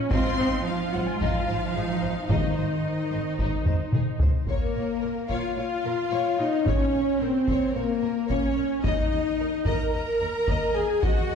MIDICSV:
0, 0, Header, 1, 8, 480
1, 0, Start_track
1, 0, Key_signature, -5, "minor"
1, 0, Tempo, 545455
1, 100, Time_signature, 4, 2, 24, 8
1, 9988, End_track
2, 0, Start_track
2, 0, Title_t, "Violin section"
2, 0, Program_c, 0, 48
2, 100, Note_on_c, 0, 84, 80
2, 546, Note_off_c, 0, 84, 0
2, 583, Note_on_c, 0, 77, 69
2, 821, Note_off_c, 0, 77, 0
2, 826, Note_on_c, 0, 78, 57
2, 940, Note_on_c, 0, 80, 52
2, 943, Note_off_c, 0, 78, 0
2, 1052, Note_on_c, 0, 77, 73
2, 1060, Note_off_c, 0, 80, 0
2, 1997, Note_off_c, 0, 77, 0
2, 2025, Note_on_c, 0, 75, 50
2, 3462, Note_off_c, 0, 75, 0
2, 3939, Note_on_c, 0, 70, 51
2, 4624, Note_off_c, 0, 70, 0
2, 4658, Note_on_c, 0, 77, 54
2, 4890, Note_off_c, 0, 77, 0
2, 4900, Note_on_c, 0, 77, 55
2, 5606, Note_off_c, 0, 77, 0
2, 5632, Note_on_c, 0, 75, 50
2, 5866, Note_off_c, 0, 75, 0
2, 5866, Note_on_c, 0, 73, 56
2, 6343, Note_off_c, 0, 73, 0
2, 6347, Note_on_c, 0, 72, 49
2, 6824, Note_off_c, 0, 72, 0
2, 6824, Note_on_c, 0, 70, 54
2, 7302, Note_off_c, 0, 70, 0
2, 7303, Note_on_c, 0, 73, 56
2, 7772, Note_off_c, 0, 73, 0
2, 7780, Note_on_c, 0, 75, 58
2, 8486, Note_off_c, 0, 75, 0
2, 8499, Note_on_c, 0, 82, 58
2, 8724, Note_off_c, 0, 82, 0
2, 8734, Note_on_c, 0, 82, 69
2, 9443, Note_off_c, 0, 82, 0
2, 9462, Note_on_c, 0, 80, 57
2, 9699, Note_on_c, 0, 78, 62
2, 9701, Note_off_c, 0, 80, 0
2, 9988, Note_off_c, 0, 78, 0
2, 9988, End_track
3, 0, Start_track
3, 0, Title_t, "Violin section"
3, 0, Program_c, 1, 48
3, 98, Note_on_c, 1, 63, 60
3, 322, Note_off_c, 1, 63, 0
3, 339, Note_on_c, 1, 72, 44
3, 409, Note_off_c, 1, 72, 0
3, 824, Note_on_c, 1, 72, 39
3, 894, Note_off_c, 1, 72, 0
3, 1065, Note_on_c, 1, 63, 53
3, 1286, Note_off_c, 1, 63, 0
3, 1302, Note_on_c, 1, 72, 43
3, 1373, Note_off_c, 1, 72, 0
3, 1547, Note_on_c, 1, 68, 43
3, 1618, Note_off_c, 1, 68, 0
3, 1780, Note_on_c, 1, 72, 38
3, 1850, Note_off_c, 1, 72, 0
3, 2018, Note_on_c, 1, 63, 48
3, 2242, Note_off_c, 1, 63, 0
3, 2255, Note_on_c, 1, 72, 31
3, 2325, Note_off_c, 1, 72, 0
3, 2741, Note_on_c, 1, 72, 30
3, 2812, Note_off_c, 1, 72, 0
3, 2985, Note_on_c, 1, 63, 40
3, 3206, Note_off_c, 1, 63, 0
3, 3226, Note_on_c, 1, 72, 29
3, 3297, Note_off_c, 1, 72, 0
3, 3466, Note_on_c, 1, 68, 34
3, 3536, Note_off_c, 1, 68, 0
3, 3706, Note_on_c, 1, 72, 32
3, 3777, Note_off_c, 1, 72, 0
3, 3945, Note_on_c, 1, 73, 45
3, 4166, Note_off_c, 1, 73, 0
3, 4184, Note_on_c, 1, 73, 38
3, 4254, Note_off_c, 1, 73, 0
3, 4412, Note_on_c, 1, 70, 36
3, 4482, Note_off_c, 1, 70, 0
3, 4658, Note_on_c, 1, 73, 48
3, 4882, Note_off_c, 1, 73, 0
3, 4901, Note_on_c, 1, 73, 31
3, 4971, Note_off_c, 1, 73, 0
3, 5142, Note_on_c, 1, 70, 42
3, 5212, Note_off_c, 1, 70, 0
3, 5385, Note_on_c, 1, 73, 49
3, 5606, Note_off_c, 1, 73, 0
3, 5632, Note_on_c, 1, 73, 37
3, 5702, Note_off_c, 1, 73, 0
3, 5872, Note_on_c, 1, 73, 48
3, 6090, Note_off_c, 1, 73, 0
3, 6106, Note_on_c, 1, 73, 31
3, 6177, Note_off_c, 1, 73, 0
3, 6348, Note_on_c, 1, 70, 34
3, 6419, Note_off_c, 1, 70, 0
3, 6582, Note_on_c, 1, 73, 52
3, 6805, Note_off_c, 1, 73, 0
3, 6821, Note_on_c, 1, 73, 36
3, 6891, Note_off_c, 1, 73, 0
3, 7053, Note_on_c, 1, 70, 36
3, 7124, Note_off_c, 1, 70, 0
3, 7291, Note_on_c, 1, 73, 53
3, 7518, Note_off_c, 1, 73, 0
3, 7527, Note_on_c, 1, 73, 39
3, 7598, Note_off_c, 1, 73, 0
3, 7776, Note_on_c, 1, 75, 52
3, 8001, Note_off_c, 1, 75, 0
3, 8018, Note_on_c, 1, 75, 37
3, 8088, Note_off_c, 1, 75, 0
3, 8262, Note_on_c, 1, 70, 31
3, 8332, Note_off_c, 1, 70, 0
3, 8500, Note_on_c, 1, 75, 53
3, 8723, Note_off_c, 1, 75, 0
3, 8739, Note_on_c, 1, 75, 40
3, 8810, Note_off_c, 1, 75, 0
3, 8973, Note_on_c, 1, 70, 34
3, 9043, Note_off_c, 1, 70, 0
3, 9224, Note_on_c, 1, 75, 50
3, 9445, Note_off_c, 1, 75, 0
3, 9456, Note_on_c, 1, 75, 42
3, 9527, Note_off_c, 1, 75, 0
3, 9696, Note_on_c, 1, 75, 49
3, 9921, Note_off_c, 1, 75, 0
3, 9933, Note_on_c, 1, 75, 36
3, 9988, Note_off_c, 1, 75, 0
3, 9988, End_track
4, 0, Start_track
4, 0, Title_t, "French horn section"
4, 0, Program_c, 2, 60
4, 107, Note_on_c, 2, 63, 51
4, 108, Note_on_c, 2, 72, 52
4, 3668, Note_off_c, 2, 63, 0
4, 3704, Note_off_c, 2, 72, 0
4, 3952, Note_on_c, 2, 58, 57
4, 4631, Note_off_c, 2, 58, 0
4, 4674, Note_on_c, 2, 65, 53
4, 4903, Note_off_c, 2, 65, 0
4, 4918, Note_on_c, 2, 65, 65
4, 5615, Note_off_c, 2, 65, 0
4, 5630, Note_on_c, 2, 63, 56
4, 5863, Note_on_c, 2, 61, 60
4, 5865, Note_off_c, 2, 63, 0
4, 6342, Note_off_c, 2, 61, 0
4, 6361, Note_on_c, 2, 60, 60
4, 6821, Note_off_c, 2, 60, 0
4, 6825, Note_on_c, 2, 58, 60
4, 7293, Note_off_c, 2, 58, 0
4, 7315, Note_on_c, 2, 61, 57
4, 7783, Note_on_c, 2, 63, 63
4, 7788, Note_off_c, 2, 61, 0
4, 8487, Note_off_c, 2, 63, 0
4, 8510, Note_on_c, 2, 70, 62
4, 8740, Note_off_c, 2, 70, 0
4, 8751, Note_on_c, 2, 70, 72
4, 9451, Note_off_c, 2, 70, 0
4, 9456, Note_on_c, 2, 68, 69
4, 9698, Note_off_c, 2, 68, 0
4, 9710, Note_on_c, 2, 66, 59
4, 9988, Note_off_c, 2, 66, 0
4, 9988, End_track
5, 0, Start_track
5, 0, Title_t, "Viola section"
5, 0, Program_c, 3, 48
5, 0, Note_on_c, 3, 61, 69
5, 98, Note_off_c, 3, 61, 0
5, 98, Note_on_c, 3, 65, 73
5, 334, Note_off_c, 3, 65, 0
5, 336, Note_on_c, 3, 63, 60
5, 578, Note_off_c, 3, 63, 0
5, 583, Note_on_c, 3, 65, 62
5, 1537, Note_on_c, 3, 63, 48
5, 1541, Note_off_c, 3, 65, 0
5, 2009, Note_off_c, 3, 63, 0
5, 2019, Note_on_c, 3, 63, 48
5, 3666, Note_off_c, 3, 63, 0
5, 3942, Note_on_c, 3, 58, 53
5, 4626, Note_off_c, 3, 58, 0
5, 4660, Note_on_c, 3, 65, 46
5, 4889, Note_off_c, 3, 65, 0
5, 4900, Note_on_c, 3, 65, 56
5, 5606, Note_off_c, 3, 65, 0
5, 5625, Note_on_c, 3, 63, 49
5, 5862, Note_off_c, 3, 63, 0
5, 5863, Note_on_c, 3, 61, 51
5, 6340, Note_on_c, 3, 60, 49
5, 6342, Note_off_c, 3, 61, 0
5, 6820, Note_off_c, 3, 60, 0
5, 6823, Note_on_c, 3, 58, 51
5, 7301, Note_off_c, 3, 58, 0
5, 7309, Note_on_c, 3, 61, 52
5, 7779, Note_on_c, 3, 63, 53
5, 7784, Note_off_c, 3, 61, 0
5, 8499, Note_off_c, 3, 63, 0
5, 8505, Note_on_c, 3, 70, 46
5, 8735, Note_off_c, 3, 70, 0
5, 8746, Note_on_c, 3, 70, 60
5, 9448, Note_off_c, 3, 70, 0
5, 9462, Note_on_c, 3, 68, 51
5, 9701, Note_off_c, 3, 68, 0
5, 9708, Note_on_c, 3, 66, 58
5, 9988, Note_off_c, 3, 66, 0
5, 9988, End_track
6, 0, Start_track
6, 0, Title_t, "Cello section"
6, 0, Program_c, 4, 48
6, 101, Note_on_c, 4, 60, 96
6, 547, Note_off_c, 4, 60, 0
6, 582, Note_on_c, 4, 53, 81
6, 821, Note_off_c, 4, 53, 0
6, 821, Note_on_c, 4, 54, 61
6, 941, Note_off_c, 4, 54, 0
6, 955, Note_on_c, 4, 56, 63
6, 1063, Note_on_c, 4, 53, 76
6, 1067, Note_off_c, 4, 56, 0
6, 2021, Note_off_c, 4, 53, 0
6, 2029, Note_on_c, 4, 51, 55
6, 3464, Note_off_c, 4, 51, 0
6, 3940, Note_on_c, 4, 46, 58
6, 4010, Note_off_c, 4, 46, 0
6, 4181, Note_on_c, 4, 46, 40
6, 4252, Note_off_c, 4, 46, 0
6, 4421, Note_on_c, 4, 46, 35
6, 4491, Note_off_c, 4, 46, 0
6, 4662, Note_on_c, 4, 46, 50
6, 4733, Note_off_c, 4, 46, 0
6, 4905, Note_on_c, 4, 46, 36
6, 4975, Note_off_c, 4, 46, 0
6, 5142, Note_on_c, 4, 46, 36
6, 5213, Note_off_c, 4, 46, 0
6, 5384, Note_on_c, 4, 46, 53
6, 5454, Note_off_c, 4, 46, 0
6, 5621, Note_on_c, 4, 46, 37
6, 5691, Note_off_c, 4, 46, 0
6, 5864, Note_on_c, 4, 46, 56
6, 5934, Note_off_c, 4, 46, 0
6, 6102, Note_on_c, 4, 46, 38
6, 6172, Note_off_c, 4, 46, 0
6, 6343, Note_on_c, 4, 46, 37
6, 6413, Note_off_c, 4, 46, 0
6, 6581, Note_on_c, 4, 46, 52
6, 6651, Note_off_c, 4, 46, 0
6, 6822, Note_on_c, 4, 46, 38
6, 6893, Note_off_c, 4, 46, 0
6, 7060, Note_on_c, 4, 46, 34
6, 7130, Note_off_c, 4, 46, 0
6, 7297, Note_on_c, 4, 46, 54
6, 7367, Note_off_c, 4, 46, 0
6, 7542, Note_on_c, 4, 46, 39
6, 7612, Note_off_c, 4, 46, 0
6, 7780, Note_on_c, 4, 39, 53
6, 7850, Note_off_c, 4, 39, 0
6, 8024, Note_on_c, 4, 39, 40
6, 8095, Note_off_c, 4, 39, 0
6, 8264, Note_on_c, 4, 39, 38
6, 8335, Note_off_c, 4, 39, 0
6, 8500, Note_on_c, 4, 39, 47
6, 8571, Note_off_c, 4, 39, 0
6, 8744, Note_on_c, 4, 39, 34
6, 8815, Note_off_c, 4, 39, 0
6, 8981, Note_on_c, 4, 39, 38
6, 9051, Note_off_c, 4, 39, 0
6, 9223, Note_on_c, 4, 39, 59
6, 9293, Note_off_c, 4, 39, 0
6, 9459, Note_on_c, 4, 39, 41
6, 9529, Note_off_c, 4, 39, 0
6, 9700, Note_on_c, 4, 39, 60
6, 9771, Note_off_c, 4, 39, 0
6, 9936, Note_on_c, 4, 39, 40
6, 9988, Note_off_c, 4, 39, 0
6, 9988, End_track
7, 0, Start_track
7, 0, Title_t, "Double bass section"
7, 0, Program_c, 5, 48
7, 110, Note_on_c, 5, 32, 70
7, 180, Note_off_c, 5, 32, 0
7, 350, Note_on_c, 5, 32, 51
7, 420, Note_off_c, 5, 32, 0
7, 829, Note_on_c, 5, 32, 49
7, 899, Note_off_c, 5, 32, 0
7, 1064, Note_on_c, 5, 32, 56
7, 1134, Note_off_c, 5, 32, 0
7, 1304, Note_on_c, 5, 32, 41
7, 1374, Note_off_c, 5, 32, 0
7, 1544, Note_on_c, 5, 32, 40
7, 1615, Note_off_c, 5, 32, 0
7, 1783, Note_on_c, 5, 32, 39
7, 1853, Note_off_c, 5, 32, 0
7, 2025, Note_on_c, 5, 32, 49
7, 2096, Note_off_c, 5, 32, 0
7, 2267, Note_on_c, 5, 32, 35
7, 2338, Note_off_c, 5, 32, 0
7, 2747, Note_on_c, 5, 32, 37
7, 2817, Note_off_c, 5, 32, 0
7, 2986, Note_on_c, 5, 32, 48
7, 3056, Note_off_c, 5, 32, 0
7, 3224, Note_on_c, 5, 32, 31
7, 3295, Note_off_c, 5, 32, 0
7, 3463, Note_on_c, 5, 32, 30
7, 3533, Note_off_c, 5, 32, 0
7, 3698, Note_on_c, 5, 32, 32
7, 3768, Note_off_c, 5, 32, 0
7, 9988, End_track
8, 0, Start_track
8, 0, Title_t, "Taiko and cinematic ensemble drums"
8, 100, Note_on_c, 9, 41, 100
8, 188, Note_off_c, 9, 41, 0
8, 1067, Note_on_c, 9, 41, 68
8, 1155, Note_off_c, 9, 41, 0
8, 2024, Note_on_c, 9, 41, 83
8, 2112, Note_off_c, 9, 41, 0
8, 2984, Note_on_c, 9, 41, 65
8, 3072, Note_off_c, 9, 41, 0
8, 3219, Note_on_c, 9, 45, 58
8, 3307, Note_off_c, 9, 45, 0
8, 3453, Note_on_c, 9, 47, 60
8, 3541, Note_off_c, 9, 47, 0
8, 3691, Note_on_c, 9, 43, 77
8, 3779, Note_off_c, 9, 43, 0
8, 3932, Note_on_c, 9, 41, 56
8, 4020, Note_off_c, 9, 41, 0
8, 4656, Note_on_c, 9, 41, 32
8, 4744, Note_off_c, 9, 41, 0
8, 5859, Note_on_c, 9, 41, 80
8, 5947, Note_off_c, 9, 41, 0
8, 6579, Note_on_c, 9, 41, 66
8, 6667, Note_off_c, 9, 41, 0
8, 7298, Note_on_c, 9, 41, 60
8, 7386, Note_off_c, 9, 41, 0
8, 7778, Note_on_c, 9, 41, 81
8, 7866, Note_off_c, 9, 41, 0
8, 8495, Note_on_c, 9, 41, 69
8, 8583, Note_off_c, 9, 41, 0
8, 9217, Note_on_c, 9, 41, 63
8, 9305, Note_off_c, 9, 41, 0
8, 9704, Note_on_c, 9, 41, 85
8, 9792, Note_off_c, 9, 41, 0
8, 9988, End_track
0, 0, End_of_file